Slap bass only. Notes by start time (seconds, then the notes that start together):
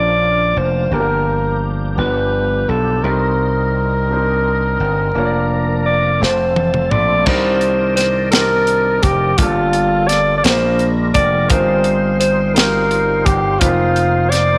Already playing: A#1
0.56 F1
0.91 G1
1.97 G1
2.69 B1
3.04 C2
4.80 G1
5.15 F1
6.22 F1
6.92 A#1
7.26 C2
9.03 F1
9.38 G1
10.45 A#1
11.15 F1
11.50 G1
13.26 G1
13.62 F1